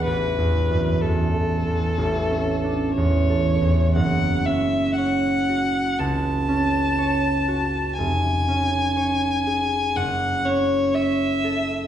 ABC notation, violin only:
X:1
M:4/4
L:1/8
Q:1/4=61
K:A
V:1 name="Violin"
B2 A4 c2 | [K:F#m] f e f2 a4 | g4 f c e2 |]